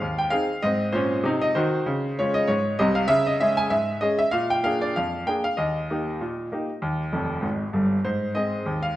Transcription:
0.00 0.28 D#2 medium
0.00 0.18 F5 medium
0.18 0.32 G5 medium
0.30 0.48 C4 soft
0.30 0.48 D#4 soft
0.30 0.49 G#4 medium
0.30 0.62 F5 medium
0.62 0.88 G#2 medium
0.62 0.89 C4 medium
0.62 0.93 D#5 medium
0.92 1.18 A#2 medium
0.92 1.19 C#4 medium
0.92 1.41 C5 medium
1.24 1.49 C3 medium
1.24 1.50 D#4 medium
1.41 1.55 D#5 medium
1.55 1.80 D#3 medium
1.55 1.81 F#4 medium
1.55 2.17 C5 medium
1.86 2.12 C#3 medium
2.19 2.36 G#3 medium
2.19 2.36 C#4 medium
2.19 2.36 F4 medium
2.19 2.35 C#5 medium
2.34 2.48 D#5 medium
2.48 2.74 G#2 medium
2.48 2.78 C#5 medium
2.79 3.04 C2 medium
2.79 3.04 C3 medium
2.79 2.96 D#5 medium
2.95 3.09 F5 medium
3.08 3.35 C#3 medium
3.08 3.25 E5 loud
3.27 3.40 D#5 medium
3.40 3.58 G#3 medium
3.40 3.58 C#4 soft
3.40 3.58 G#4 medium
3.40 3.57 E5 medium
3.57 3.71 G#5 medium
3.70 3.97 G#2 medium
3.70 4.01 E5 medium
4.01 4.19 G#3 soft
4.01 4.19 C#4 soft
4.01 4.19 G#4 soft
4.01 4.18 D#5 medium
4.19 4.33 E5 medium
4.31 4.59 A#2 medium
4.31 4.49 F5 medium
4.50 4.64 G5 medium
4.64 4.81 A#3 soft
4.64 4.82 D4 soft
4.64 4.82 G#4 medium
4.64 4.81 F5 medium
4.81 4.95 D5 medium
4.96 5.22 F2 medium
4.96 5.26 F5 medium
5.27 5.43 A#3 soft
5.27 5.44 D4 soft
5.27 5.45 G#4 soft
5.27 5.43 G5 medium
5.44 5.57 F5 medium
5.57 5.84 D#2 medium
5.57 7.74 D#5 medium
5.90 6.07 A#3 soft
5.90 6.07 D#4 soft
5.90 6.07 G4 soft
6.21 6.46 A#2 medium
6.52 6.69 A#3 soft
6.52 6.69 D#4 soft
6.52 6.69 G4 soft
6.82 7.08 D#2 medium
7.12 7.36 F1 medium
7.12 7.36 F2 medium
7.42 7.65 G#1 medium
7.42 7.66 G#2 medium
7.73 7.97 G1 medium
7.73 7.97 G2 medium
8.05 8.31 G#2 medium
8.05 8.36 C5 medium
8.35 8.53 G#3 soft
8.35 8.52 C4 soft
8.35 8.53 G#4 soft
8.35 8.83 D#5 medium
8.66 8.93 D#2 medium
8.83 8.96 F5 medium

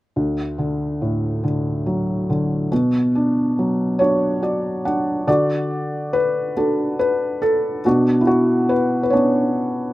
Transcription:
0.16 2.68 D2 soft
0.58 1.42 D3 soft
1.02 2.68 A2 soft
1.44 2.28 D3 soft
1.86 2.69 F#3 soft
2.30 2.71 D3 soft
2.72 5.24 B2 soft
3.15 3.99 D4 soft
3.59 5.25 F#3 soft
3.99 4.84 D4 soft
3.99 4.41 F#4 soft
3.99 5.23 C#5 medium
4.42 5.25 F#4 soft
4.42 4.82 D5 soft
4.85 5.26 D4 soft
4.85 5.25 F#5 soft
5.27 7.80 D3 soft
5.27 6.53 F#4 soft
5.27 6.16 D5 medium
6.13 6.98 B4 medium
6.57 7.81 D4 soft
6.57 7.81 F#4 soft
6.57 7.40 A4 soft
6.99 7.39 B4 medium
7.42 7.85 A4 medium
7.85 9.93 B2 soft
7.85 9.10 D4 soft
7.85 8.22 F#4 medium
8.21 8.27 E4 soft
8.27 8.71 F#4 medium
8.69 9.02 B4 medium
9.03 9.11 B4 soft
9.10 9.93 B3 soft
9.10 9.93 C#4 soft
9.10 9.93 D4 soft
9.10 9.93 C#5 soft

